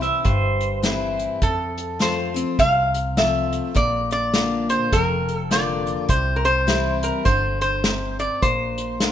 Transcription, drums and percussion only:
0.03 closed hi-hat medium
0.25 kick loud
0.25 closed hi-hat medium
0.61 closed hi-hat medium
0.83 snare loud
0.83 closed hi-hat medium
1.19 closed hi-hat medium
1.42 kick medium
1.42 closed hi-hat medium
1.78 closed hi-hat medium
2.00 snare loud
2.00 closed hi-hat medium
2.36 closed hi-hat medium
2.59 kick medium
2.59 closed hi-hat medium
2.94 closed hi-hat medium
3.17 snare loud
3.17 closed hi-hat medium
3.53 closed hi-hat medium
3.75 kick loud
3.75 closed hi-hat medium
4.11 closed hi-hat medium
4.34 snare loud
4.34 closed hi-hat medium
4.69 closed hi-hat medium
4.92 kick loud
4.92 closed hi-hat medium
5.29 closed hi-hat medium
5.51 snare loud
5.51 closed hi-hat medium
5.87 closed hi-hat medium
6.09 kick loud
6.09 closed hi-hat medium
6.45 closed hi-hat medium
6.68 snare loud
6.68 closed hi-hat medium
7.03 closed hi-hat medium
7.26 kick loud
7.26 closed hi-hat medium
7.61 closed hi-hat medium
7.84 snare loud
7.84 closed hi-hat medium
8.19 closed hi-hat medium
8.42 kick loud
8.42 closed hi-hat medium
8.78 closed hi-hat medium
9.00 snare loud
9.00 closed hi-hat medium

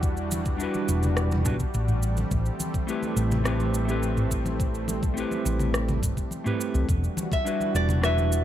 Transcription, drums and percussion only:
0.03 kick loud
0.03 cabasa soft
0.17 cabasa soft
0.31 high conga medium
0.31 cabasa medium
0.46 kick medium
0.46 cabasa soft
0.60 cabasa soft
0.74 high conga medium
0.74 cabasa soft
0.88 cabasa medium
1.03 low conga medium
1.03 cabasa soft
1.17 cross-stick medium
1.17 cabasa soft
1.31 high conga medium
1.31 low conga medium
1.31 cabasa soft
1.45 kick medium
1.45 mid tom medium
1.45 cabasa medium
1.60 kick medium
1.60 cabasa soft
1.74 high conga medium
1.74 cabasa soft
1.88 mid tom medium
1.88 cabasa soft
2.03 cabasa medium
2.17 high conga medium
2.17 cabasa soft
2.31 kick loud
2.31 cabasa soft
2.46 cabasa soft
2.60 high conga medium
2.60 cabasa medium
2.74 kick medium
2.74 cabasa soft
2.89 cabasa soft
3.03 high conga medium
3.03 cabasa soft
3.17 cabasa medium
3.32 low conga medium
3.32 cabasa soft
3.45 cross-stick medium
3.45 cabasa soft
3.60 high conga medium
3.60 cabasa soft
3.74 cabasa medium
3.89 cabasa soft
4.03 high conga medium
4.03 cabasa soft
4.17 mid tom medium
4.17 cabasa soft
4.31 kick medium
4.31 cabasa medium
4.46 high conga medium
4.46 cabasa soft
4.60 kick loud
4.60 cabasa soft
4.74 cabasa soft
4.88 high conga medium
4.88 cabasa medium
5.03 kick medium
5.03 cabasa soft
5.17 cabasa soft
5.31 high conga medium
5.31 cabasa soft
5.46 cabasa medium
5.59 low conga medium
5.59 cabasa soft
5.74 cross-stick medium
5.74 cabasa soft
5.89 high conga medium
5.89 low conga medium
5.89 cabasa soft
6.03 kick medium
6.03 mid tom medium
6.03 cabasa medium
6.17 kick medium
6.17 cabasa soft
6.31 high conga medium
6.31 cabasa soft
6.46 mid tom medium
6.46 cabasa soft
6.61 cabasa medium
6.74 high conga medium
6.74 cabasa soft
6.89 kick loud
6.89 cabasa soft
7.04 cabasa soft
7.17 high conga loud
7.17 cabasa medium
7.32 kick medium
7.32 cabasa soft
7.47 cabasa soft
7.60 high conga medium
7.60 cabasa soft
7.75 cabasa medium
7.89 low conga loud
7.89 cabasa soft
8.03 cross-stick medium
8.03 cabasa soft
8.18 high conga medium
8.18 cabasa soft
8.32 cabasa medium

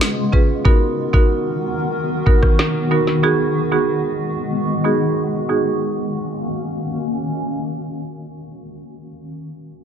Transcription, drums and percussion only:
0.01 snare loud
0.33 kick medium
0.65 kick loud
1.14 kick medium
2.27 kick medium
2.43 kick medium
2.43 cross-stick medium
2.59 snare loud
3.07 snare medium

